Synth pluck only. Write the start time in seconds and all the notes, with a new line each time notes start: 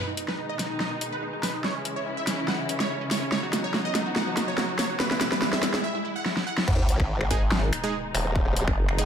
0.07 D#4
0.17 D#4
0.28 B4
0.38 D#4
0.49 D#5
0.59 D#4
0.70 D#4
0.80 D#5
0.91 D#4
1.01 D#4
1.12 B4
1.22 D#4
1.33 D#4
1.43 B4
1.54 D#4
1.64 C#5
1.75 C#4
1.85 C#4
1.96 C#5
2.06 C#4
2.17 E5
2.27 C#4
2.38 C#4
2.48 F#5
2.59 C#4
2.69 C#4
2.80 C#5
2.90 C#4
3.01 C#4
3.11 C#5
3.22 C#4
3.32 C#5
3.43 F#4
3.53 F#4
3.64 C#5
3.74 F#4
3.85 D#5
3.95 F#4
4.06 F#4
4.16 F#5
4.27 F#4
4.37 F#4
4.48 C#5
4.58 F#4
4.69 F#4
4.79 C#5
4.90 F#4
5.00 B4
5.11 E4
5.21 E4
5.32 B4
5.42 E4
5.53 E5
5.63 E4
5.74 E4
5.84 E5
5.95 E4
6.05 E4
6.16 F#5
6.26 E4
6.37 E4
6.47 F#5
6.58 E4